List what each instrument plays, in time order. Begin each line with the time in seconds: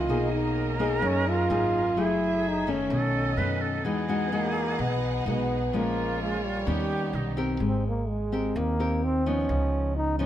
Already playing: violin section A#3 D#5, trombone F4
0.08 upright bass B1, nylon-string guitar B2 A#3 D#4 G#4, violin section G#4 C#5, flute A#4
0.32 trombone D#4
0.79 nylon-string guitar A#3 D#4 G#4
1.02 nylon-string guitar F#2, upright bass F#2, trombone C#4
1.28 trombone F4
1.50 upright bass G#1, nylon-string guitar A#3 D#4 G#4
1.96 upright bass F#1, nylon-string guitar F#3 A3 E4 G#4, violin section A3 E5, flute G#4
2.01 trombone E4
2.48 trombone D#4
2.67 nylon-string guitar D#3 A3 C#4
2.71 trombone C#4
2.90 upright bass B1, nylon-string guitar B2, violin section C#4 A4 D#5, flute A4
3.37 upright bass F#2, nylon-string guitar D#3 A3 C#4, flute B4
3.61 flute A4
3.84 upright bass E2, nylon-string guitar E3 G#3 D#4 F#4, violin section D#4 G#4 F#5, flute G#4
4.08 nylon-string guitar G#3 D#4 F#4
4.26 trombone B3
4.32 nylon-string guitar G#3 D#4 F#4, trombone A#3
4.79 upright bass B1, nylon-string guitar B2, trombone B3
5.26 upright bass B1, nylon-string guitar G#3 D#4 F#4, trombone B3
5.72 upright bass A#1, nylon-string guitar A#2 F3 G#3 C#4, violin section A#3 C#5, trombone A#3, flute F4
6.22 trombone G#3
6.45 trombone G3
6.67 upright bass D#2, nylon-string guitar D#3 B3 C#4 G4, violin section B3 G4, flute G4
7.13 upright bass B1, flute D#4
7.37 nylon-string guitar C4 G4 A#4
7.60 upright bass G#1, nylon-string guitar G#3, trombone C4
7.88 trombone A#3
8.09 trombone G#3
8.32 nylon-string guitar C4 G4 A#4
8.56 upright bass D#2, nylon-string guitar D#3, trombone A#3
8.80 nylon-string guitar C4 G4 A#4
9.04 trombone C4
9.26 nylon-string guitar F3 B3 D#4, trombone C#4
9.49 upright bass C#2, nylon-string guitar C#3
9.96 trombone D#4
10.19 nylon-string guitar F3 B3 D#4, trombone C#4